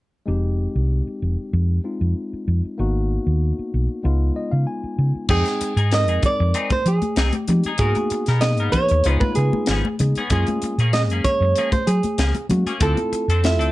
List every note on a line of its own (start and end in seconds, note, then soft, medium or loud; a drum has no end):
0.26 0.66 F1 medium
0.26 1.80 G#3 medium
0.26 1.81 C4 medium
0.26 1.81 D#4 medium
0.26 1.82 G4 medium
0.75 1.00 C2 medium
1.07 muted fingered electric bass stroke soft
1.22 1.35 F1 medium
1.53 1.78 F2 medium
1.84 2.78 G#3 soft
1.84 2.79 C4 soft
1.84 2.79 D#4 soft
1.84 2.79 F4 soft
2.01 2.13 F2 medium
2.33 muted fingered electric bass stroke soft
2.48 2.60 F2 medium
2.65 muted fingered electric bass stroke soft
2.78 3.17 G#1 medium
2.78 4.01 A#3 medium
2.78 4.02 B3 medium
2.78 4.02 D#4 medium
2.78 4.02 F#4 medium
3.27 3.51 D#2 medium
3.59 muted fingered electric bass stroke soft
3.74 3.86 B1 medium
4.03 4.29 C#2 medium
4.03 5.26 G#3 medium
4.03 5.27 B3 medium
4.03 5.27 D#4 soft
4.03 5.28 F4 medium
4.36 4.51 D#5 medium
4.51 4.64 C#3 medium
4.51 4.66 F5 medium
4.67 5.25 G#5 soft
4.84 muted fingered electric bass stroke soft
4.98 5.11 C#3 medium
5.15 muted fingered electric bass stroke soft
5.28 5.42 F2 medium
5.28 5.73 G#3 medium
5.28 5.46 C4 medium
5.28 5.73 C4 medium
5.28 5.73 D#4 medium
5.28 5.46 D#4 medium
5.28 5.45 G#4 medium
5.28 5.94 G#4 medium
5.28 5.73 G5 medium
5.28 kick medium
5.28 crash medium
5.46 muted clean electric guitar stroke soft
5.46 snare soft
5.46 closed hi-hat soft
5.61 muted fingered electric bass stroke soft
5.61 muted clean electric guitar stroke soft
5.61 closed hi-hat medium
5.76 6.08 G#2 medium
5.76 5.91 D#4 soft
5.76 5.92 G#4 medium
5.76 closed hi-hat soft
5.91 6.78 G#3 medium
5.91 6.78 C4 medium
5.91 6.79 D#4 medium
5.91 6.79 A#4 medium
5.91 6.25 D#5 medium
5.91 muted clean electric guitar stroke soft
5.91 snare medium
5.91 closed hi-hat medium
6.08 6.20 F2 medium
6.08 6.27 D#4 soft
6.08 6.27 G#4 soft
6.08 closed hi-hat soft
6.23 6.69 D5 medium
6.23 kick medium
6.23 closed hi-hat medium
6.23 low conga medium
6.40 6.52 F2 medium
6.40 muted clean electric guitar stroke soft
6.54 6.71 C4 medium
6.54 6.71 D#4 medium
6.54 6.71 G#4 medium
6.54 closed hi-hat medium
6.70 6.87 C5 medium
6.70 muted fingered electric bass stroke soft
6.70 muted clean electric guitar stroke soft
6.70 kick medium
6.70 closed hi-hat soft
6.70 high conga medium
6.86 6.99 F3 medium
6.86 7.29 G#4 medium
6.86 muted clean electric guitar stroke soft
6.86 closed hi-hat medium
7.02 muted fingered electric bass stroke soft
7.02 closed hi-hat soft
7.02 high conga medium
7.16 7.30 C2 medium
7.16 7.34 C4 soft
7.16 7.34 D#4 medium
7.16 7.34 G#4 medium
7.16 snare loud
7.16 closed hi-hat medium
7.29 7.45 G4 medium
7.29 closed hi-hat soft
7.33 muted clean electric guitar stroke soft
7.33 high conga medium
7.48 7.61 F3 medium
7.48 7.70 G#3 medium
7.48 7.71 C4 soft
7.48 7.71 D#4 medium
7.48 7.71 G4 medium
7.48 muted clean electric guitar stroke soft
7.48 closed hi-hat medium
7.48 high conga medium
7.48 low conga medium
7.64 7.81 G#4 soft
7.64 muted fingered electric bass stroke soft
7.64 closed hi-hat soft
7.68 7.80 D#4 soft
7.78 7.92 G#2 medium
7.78 7.96 F#3 medium
7.78 8.23 A#3 medium
7.78 7.96 B3 medium
7.78 8.24 B3 medium
7.78 7.96 D#4 medium
7.78 8.24 D#4 medium
7.78 8.24 F#4 medium
7.78 8.38 G#4 medium
7.78 7.95 A#4 medium
7.78 kick loud
7.78 closed hi-hat medium
7.95 muted clean electric guitar stroke soft
7.95 closed hi-hat soft
7.95 high conga medium
8.10 muted fingered electric bass stroke soft
8.10 muted clean electric guitar stroke soft
8.10 closed hi-hat medium
8.26 8.59 B2 medium
8.26 8.43 B3 soft
8.26 8.42 D#4 soft
8.26 8.43 A#4 soft
8.26 snare soft
8.26 closed hi-hat soft
8.41 9.05 A#3 medium
8.41 9.04 B3 medium
8.41 9.05 D#4 medium
8.41 9.05 G#4 medium
8.41 8.72 D#5 medium
8.41 muted clean electric guitar stroke soft
8.41 snare loud
8.41 closed hi-hat medium
8.57 8.71 G#2 medium
8.57 8.78 D#4 soft
8.57 8.78 A#4 soft
8.57 closed hi-hat soft
8.62 8.78 B3 soft
8.72 9.20 C#5 medium
8.72 muted fingered electric bass stroke soft
8.72 kick medium
8.72 closed hi-hat medium
8.72 low conga medium
8.89 9.02 D#2 medium
8.89 muted clean electric guitar stroke soft
8.89 closed hi-hat soft
9.04 9.18 C#2 medium
9.04 9.22 F3 medium
9.04 9.81 G#3 medium
9.04 9.81 B3 medium
9.04 9.22 B3 medium
9.04 9.22 C#4 medium
9.04 9.81 D#4 medium
9.04 9.81 F4 medium
9.04 9.22 G#4 medium
9.04 closed hi-hat medium
9.20 9.35 B4 medium
9.20 muted fingered electric bass stroke soft
9.20 muted clean electric guitar stroke soft
9.20 kick medium
9.20 high conga medium
9.35 9.50 C#3 medium
9.35 9.95 G#4 medium
9.35 muted clean electric guitar stroke soft
9.35 closed hi-hat soft
9.53 muted fingered electric bass stroke soft
9.53 high conga medium
9.66 9.81 G#1 medium
9.66 9.85 F3 medium
9.66 snare medium
9.66 closed hi-hat medium
9.71 9.86 B3 medium
9.71 9.86 C#4 medium
9.71 9.86 G#4 medium
9.85 muted clean electric guitar stroke soft
9.85 high conga medium
9.99 10.12 C#3 medium
9.99 10.21 G#3 medium
9.99 10.21 B3 soft
9.99 10.22 D#4 soft
9.99 10.22 G#4 medium
9.99 muted clean electric guitar stroke soft
9.99 closed hi-hat soft
9.99 low conga medium
10.15 10.32 B3 soft
10.15 10.32 C#4 soft
10.15 10.32 G#4 medium
10.15 muted fingered electric bass stroke soft
10.15 closed hi-hat soft
10.30 10.43 F#2 medium
10.30 10.48 F3 medium
10.30 10.74 G#3 medium
10.30 10.74 A#3 medium
10.30 10.48 A#3 medium
10.30 10.74 C#4 medium
10.30 10.48 C#4 medium
10.30 10.74 F4 medium
10.30 10.96 G#4 medium
10.30 10.47 G#4 medium
10.30 kick medium
10.30 closed hi-hat medium
10.47 muted clean electric guitar stroke soft
10.47 closed hi-hat soft
10.47 high conga medium
10.62 muted fingered electric bass stroke soft
10.62 muted clean electric guitar stroke soft
10.62 closed hi-hat medium
10.78 11.10 A#2 medium
10.78 10.95 A#3 medium
10.78 10.94 C#4 soft
10.78 10.94 G#4 medium
10.78 closed hi-hat soft
10.93 11.79 G#3 medium
10.93 11.80 A#3 medium
10.93 11.80 C#4 medium
10.93 11.80 G#4 medium
10.93 11.02 D#5 medium
10.93 muted clean electric guitar stroke soft
10.93 snare medium
10.93 closed hi-hat medium
11.10 11.22 F#2 medium
11.10 11.29 A#3 soft
11.10 11.29 C#4 soft
11.10 11.29 G#4 soft
11.10 closed hi-hat soft
11.24 11.69 C#5 medium
11.24 muted fingered electric bass stroke soft
11.24 kick medium
11.24 closed hi-hat medium
11.24 low conga medium
11.41 11.52 F#2 medium
11.41 muted clean electric guitar stroke soft
11.56 11.73 F3 medium
11.56 11.72 A#3 medium
11.56 11.72 C#4 medium
11.56 11.72 G#4 medium
11.56 closed hi-hat medium
11.72 11.88 C5 medium
11.72 muted fingered electric bass stroke soft
11.72 muted clean electric guitar stroke soft
11.72 kick medium
11.72 closed hi-hat soft
11.72 high conga medium
11.87 12.00 F#3 medium
11.87 12.46 G#4 medium
11.87 muted clean electric guitar stroke soft
11.87 closed hi-hat medium
12.03 muted fingered electric bass stroke soft
12.03 closed hi-hat soft
12.03 high conga medium
12.18 12.31 C#2 medium
12.18 12.35 F3 medium
12.18 12.34 A#3 medium
12.18 12.34 C#4 medium
12.18 12.34 G#4 medium
12.18 snare loud
12.18 closed hi-hat medium
12.35 muted clean electric guitar stroke soft
12.35 closed hi-hat soft
12.35 high conga medium
12.49 12.62 F#3 medium
12.49 12.72 G#3 medium
12.49 12.72 A#3 medium
12.49 12.72 C#4 medium
12.49 12.72 F#4 medium
12.49 muted clean electric guitar stroke soft
12.49 closed hi-hat soft
12.49 high conga medium
12.49 low conga medium
12.66 12.81 A#3 soft
12.66 12.81 C#4 soft
12.66 12.81 G#4 soft
12.66 muted fingered electric bass stroke soft
12.66 closed hi-hat soft
12.80 12.94 D2 medium
12.80 12.98 F3 medium
12.80 13.24 A3 medium
12.80 13.24 C4 medium
12.80 12.98 C4 medium
12.80 12.97 D4 medium
12.80 13.24 E4 medium
12.80 13.25 F4 medium
12.80 12.97 A4 medium
12.80 13.46 A4 medium
12.80 kick loud
12.80 closed hi-hat medium
12.97 muted clean electric guitar stroke soft
12.97 closed hi-hat soft
12.97 high conga medium
13.12 muted fingered electric bass stroke soft
13.12 muted clean electric guitar stroke soft
13.12 closed hi-hat medium
13.28 13.60 F2 medium
13.28 13.44 C4 soft
13.28 13.44 D4 soft
13.28 13.44 A4 medium
13.28 closed hi-hat soft
13.44 13.72 A3 medium
13.44 13.72 C4 medium
13.44 13.72 E4 medium
13.44 13.72 F4 medium
13.44 13.72 E5 medium
13.44 muted clean electric guitar stroke soft
13.44 snare medium
13.44 closed hi-hat medium
13.59 13.72 D2 medium
13.59 13.72 C4 soft
13.59 13.72 D4 soft
13.59 13.72 A4 soft
13.59 closed hi-hat soft